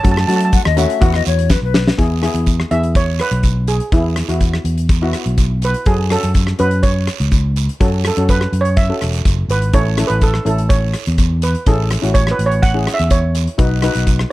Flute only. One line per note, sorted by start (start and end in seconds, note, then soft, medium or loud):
0.53 0.64 F#5 loud
0.65 0.79 D#5 loud
0.77 1.04 E5 loud
1.02 1.17 F#5 medium
1.16 1.26 D#5 medium
1.27 1.52 C#5 medium
1.50 1.62 B4 medium
1.64 1.96 B4 medium